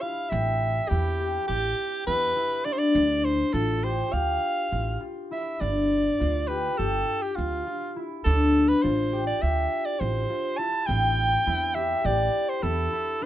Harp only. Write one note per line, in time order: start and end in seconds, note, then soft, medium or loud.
0.00 0.50 D4 medium
0.00 0.90 E4 medium
0.00 1.19 G4 medium
0.31 3.31 C4 medium
0.90 2.07 E4 medium
1.19 1.48 G4 medium
1.48 3.83 G4 medium
2.07 2.36 E4 medium
2.36 3.60 E4 medium
2.65 2.95 D4 medium
2.95 5.59 D4 medium
3.54 4.71 F4 medium
3.83 4.12 G4 medium
4.12 6.47 G4 medium
4.72 5.00 F4 medium
5.01 5.37 F4 medium
5.31 6.26 E4 medium
5.60 8.25 D4 medium
6.20 7.37 F4 medium
6.49 6.78 G4 medium
6.78 9.12 G4 medium
7.37 7.66 F4 medium
7.67 8.02 F4 medium
7.96 8.90 E4 medium
8.25 11.05 D4 medium
8.84 10.00 F4 medium
9.13 9.41 G4 medium
9.42 11.75 G4 medium
10.00 10.29 F4 medium
10.30 10.65 F4 medium
10.59 11.46 E4 medium
10.88 13.26 C4 medium
11.46 12.62 E4 medium
11.76 12.04 G4 medium
12.04 13.26 G4 medium
12.63 12.92 E4 medium
12.92 13.26 E4 medium
13.21 13.26 D4 medium